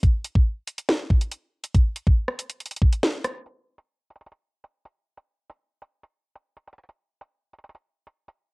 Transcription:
\new DrumStaff \with { instrumentName = "Drums" } \drummode { \time 4/4 \tempo 4 = 140 <hh bd>8 hh16 bd16 r8 hh16 hh16 sn8 bd16 hh16 hh8. hh16 | <hh bd>8 hh16 bd16 r16 ss16 hh16 hh16 hh32 hh32 hh32 hh32 bd16 hh16 sn8 <hh ss>8 | hh8. hh16 r8 hh32 hh32 hh32 hh32 hh8. hh16 r16 hh8. | hh8. hh16 r8 hh8 hh8. hh16 r16 hh16 hh32 hh32 hh32 hh32 |
hh8. hh16 r8 hh32 hh32 hh32 hh32 hh8. hh16 r16 hh8. | }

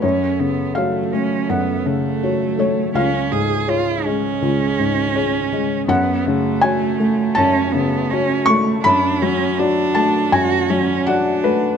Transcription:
<<
  \new Staff \with { instrumentName = "Ambient pad" } { \time 4/4 \key fis \minor \tempo 4 = 81 << { cis''1~ | cis''1 | cis''1 | fis''1 | } \\ { <fis a'>1 | <gis gis'>1 | <a fis'>1~ | <a fis'>1 | } >> }
  \new Staff \with { instrumentName = "Felt piano" } { \time 4/4 \key fis \minor cis''4 eis''4 fis''4. cis''8 | eis''2.~ eis''8 r8 | fis''4 gis''4 a''4. cis'''8 | b''4. a''8 gis''4 fis''8 b'8 | }
  \new Staff \with { instrumentName = "Felt piano" } { \time 4/4 \key fis \minor fis,8 cis8 <fis' cis''>8 a8 fis,8 cis8 <fis' cis''>8 a8 | cis,8 gis,8 <gis' cis''>8 gis8 cis,8 gis,8 <gis' cis''>8 gis8 | fis,8 cis8 <fis' cis''>8 a8 fis,8 cis8 <fis' cis''>8 a8 | fis,8 fis8 <fis' d''>8 a8 fis,8 fis8 <fis' d''>8 a8 | }
  \new Staff \with { instrumentName = "Cello" } { \time 4/4 \key fis \minor cis'8 b8 a8 cis'8 b8 a4. | cis'8 gis'8 eis'8 cis'2~ cis'8 | b8 a4. cis'8 b8 cis'8 a8 | d'8 cis'8 d'4 fis'8 cis'8 d'4 | }
>>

